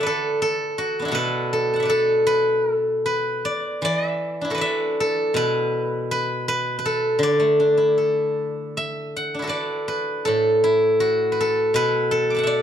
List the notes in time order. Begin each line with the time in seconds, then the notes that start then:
Already playing: D3 F#4 E5 F#5 A5
0.01 B4 D5
0.07 A4
0.42 A4
0.78 F#4
0.99 B3 D4
1.05 E4 F#4
1.11 B2 A4 B4
1.53 A4
1.74 F#5 A5
1.80 D5 E5
1.85 B4
1.90 A4
2.27 B4
2.74 A4
3.06 B4
3.45 D5
3.82 E3 D5
4.07 E5
4.41 D4 E4
4.50 F#4 A4
4.55 B4 D5
4.61 E5
5.00 A4
5.34 B2 B4
6.11 B4
6.48 B4
6.79 B4
6.86 A4
7.19 D3
7.23 D5
7.40 A3
7.60 D4
7.77 E4
7.98 A4
8.77 E5
9.16 F#5
9.34 D4
9.39 E4 F#4
9.44 A4 B4
9.49 D5
9.88 B4
10.25 A2 A4
10.64 E4
11.00 F#4
11.32 B4
11.41 A4
11.74 B2 B4
12.11 A4
12.30 D6
12.35 F#5 A5 B5
12.43 D5 E5